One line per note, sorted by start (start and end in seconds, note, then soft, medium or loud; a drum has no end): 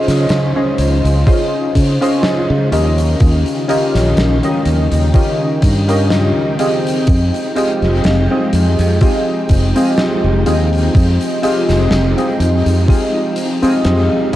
0.00 2.69 C#3 medium
0.00 0.50 C#4 medium
0.00 2.68 D#4 medium
0.00 0.50 F4 medium
0.00 4.62 F4 medium
0.00 0.50 G#4 medium
0.00 0.50 C5 medium
0.00 2.69 C5 medium
0.00 0.51 D#5 loud
0.08 0.27 C#3 loud
0.08 snare soft
0.08 closed hi-hat medium
0.29 0.52 C#3 medium
0.29 snare loud
0.29 closed hi-hat medium
0.56 1.21 C#4 medium
0.56 1.21 F4 medium
0.56 1.22 G#4 medium
0.56 1.22 C5 medium
0.56 1.22 D#5 medium
0.78 1.01 C#2 medium
0.78 closed hi-hat medium
1.05 1.24 C#2 medium
1.05 closed hi-hat medium
1.26 1.95 C#4 medium
1.26 1.95 F4 medium
1.26 1.95 G#4 medium
1.26 1.96 C5 medium
1.26 1.96 D#5 medium
1.26 kick loud
1.26 closed hi-hat medium
1.75 1.98 C#3 medium
1.75 kick medium
1.75 closed hi-hat medium
2.01 2.67 C#4 medium
2.01 2.67 F4 medium
2.01 2.67 G#4 medium
2.01 2.67 C5 medium
2.01 2.67 D#5 loud
2.01 closed hi-hat medium
2.23 snare loud
2.23 closed hi-hat medium
2.50 2.69 C#3 loud
2.72 3.14 D#2 medium
2.72 7.04 C#3 medium
2.72 7.04 D#3 medium
2.72 3.63 C#4 medium
2.72 3.63 F4 medium
2.72 3.64 G4 medium
2.72 3.64 A#4 medium
2.72 3.64 D#5 medium
2.72 14.36 G5 medium
2.72 closed hi-hat medium
2.98 closed hi-hat medium
3.20 3.43 D#2 loud
3.20 kick loud
3.20 closed hi-hat medium
3.46 closed hi-hat soft
3.68 4.37 C#4 loud
3.68 4.37 F4 medium
3.68 4.37 G4 medium
3.68 4.37 A#4 medium
3.68 4.38 D#5 loud
3.68 closed hi-hat medium
3.95 4.14 A#1 medium
3.95 snare soft
3.95 closed hi-hat medium
4.17 4.40 A#1 medium
4.17 snare loud
4.17 closed hi-hat medium
4.43 5.09 C#4 medium
4.43 5.09 F4 medium
4.43 5.09 G4 medium
4.43 5.09 A#4 medium
4.43 5.09 D#5 medium
4.43 closed hi-hat medium
4.66 4.88 D#2 medium
4.66 14.36 D#4 medium
4.66 closed hi-hat medium
4.92 5.11 D#2 medium
4.92 closed hi-hat medium
5.13 5.82 C#4 medium
5.13 5.82 F4 medium
5.13 5.83 G4 medium
5.13 5.83 A#4 medium
5.13 5.83 D#5 medium
5.13 kick loud
5.13 closed hi-hat medium
5.62 6.31 G2 medium
5.62 kick medium
5.62 closed hi-hat medium
5.88 6.54 C#4 medium
5.88 6.54 F4 medium
5.88 6.54 G4 medium
5.88 6.54 A#4 medium
5.88 6.54 D#5 loud
5.88 closed hi-hat medium
6.10 snare loud
6.10 closed hi-hat medium
6.59 7.51 C4 medium
6.59 7.51 F4 medium
6.59 7.51 G4 medium
6.59 7.51 G#4 medium
6.59 7.51 D#5 medium
6.59 closed hi-hat medium
6.87 closed hi-hat medium
7.07 7.30 F2 loud
7.07 14.36 F3 medium
7.07 14.36 G#3 medium
7.07 kick loud
7.07 closed hi-hat medium
7.34 closed hi-hat soft
7.55 8.24 C4 medium
7.55 8.24 F4 medium
7.55 8.24 G4 medium
7.55 8.25 G#4 medium
7.55 8.25 D#5 loud
7.55 closed hi-hat medium
7.82 8.01 F1 medium
7.82 snare soft
7.82 closed hi-hat medium
8.04 8.27 F1 medium
8.04 snare loud
8.04 closed hi-hat medium
8.30 8.96 C4 medium
8.30 8.96 F4 medium
8.30 8.96 G4 medium
8.30 8.96 G#4 medium
8.30 8.96 D#5 medium
8.53 8.75 F2 medium
8.53 closed hi-hat medium
8.79 8.98 F2 medium
8.79 closed hi-hat medium
9.01 9.69 C4 medium
9.01 9.69 F4 medium
9.01 9.70 G4 medium
9.01 9.70 G#4 medium
9.01 9.70 D#5 medium
9.01 kick loud
9.01 closed hi-hat medium
9.49 9.72 F1 medium
9.49 kick medium
9.49 closed hi-hat medium
9.75 10.41 C4 medium
9.75 10.41 F4 medium
9.75 10.41 G4 medium
9.75 10.41 G#4 medium
9.75 10.42 D#5 loud
9.75 closed hi-hat medium
9.98 snare loud
9.98 closed hi-hat medium
10.24 10.43 F1 loud
10.46 10.88 D#2 medium
10.46 11.38 C4 medium
10.46 11.38 F4 medium
10.46 11.38 G4 medium
10.46 11.38 G#4 medium
10.46 11.38 D#5 medium
10.46 closed hi-hat medium
10.73 closed hi-hat medium
10.95 11.17 F2 medium
10.95 kick loud
10.95 closed hi-hat medium
11.21 closed hi-hat soft
11.42 12.11 C4 medium
11.42 12.11 F4 medium
11.42 12.11 G4 medium
11.42 12.12 G#4 medium
11.42 12.12 D#5 loud
11.42 closed hi-hat medium
11.69 11.88 F1 medium
11.69 snare soft
11.69 closed hi-hat medium
11.91 12.14 F1 medium
11.91 snare loud
11.91 closed hi-hat loud
12.17 12.83 C4 medium
12.17 12.83 F4 medium
12.17 12.83 G4 medium
12.17 12.83 G#4 medium
12.17 12.83 D#5 medium
12.17 closed hi-hat soft
12.40 12.62 F2 medium
12.40 closed hi-hat medium
12.66 12.85 F2 medium
12.66 closed hi-hat medium
12.88 13.56 C4 medium
12.88 13.57 F4 medium
12.88 13.57 G4 medium
12.88 13.57 G#4 medium
12.88 13.57 D#5 medium
12.88 kick loud
12.88 closed hi-hat medium
13.36 closed hi-hat medium
13.62 14.28 C4 loud
13.62 14.28 F4 medium
13.62 14.28 G4 medium
13.62 14.28 G#4 medium
13.62 14.29 D#5 loud
13.62 muted fingered electric bass stroke soft
13.62 closed hi-hat medium
13.85 14.07 F2 medium
13.85 snare loud
13.85 closed hi-hat medium
14.33 14.36 C#4 medium